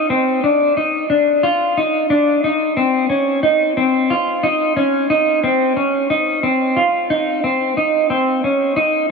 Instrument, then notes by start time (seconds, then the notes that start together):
clean electric guitar
0.10 C4
0.44 D4
0.77 D#4
1.10 D4
1.43 F4
1.77 D#4
2.10 D4
2.44 D#4
2.77 C4
3.10 C#4
3.43 D#4
3.77 C4
4.10 F4
4.43 D#4
4.77 C#4
5.10 D#4
5.44 C4
5.77 C#4
6.10 D#4
6.43 C4
6.76 F4
7.10 D#4
7.44 C4
7.77 D#4
8.10 C4
8.44 C#4
8.76 D#4